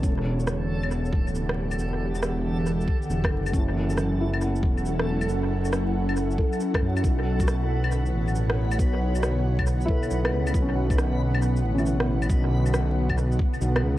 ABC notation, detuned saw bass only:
X:1
M:4/4
L:1/8
Q:"Swing 16ths" 1/4=137
K:Bm
V:1 name="Detuned saw bass" clef=bass
E,,,4- E,,, D,,,3 | E,,,4- E,,, z E,,, F,,, | F,,,4- F,,, E,,,3 | F,,,4- F,,, z2 F,, |
B,,,4- B,,, A,,,3 | B,,,4- B,,, z B,,, C,, | B,,,4- B,,, A,,,3 | B,,,4- B,,, z B,,, C,, |]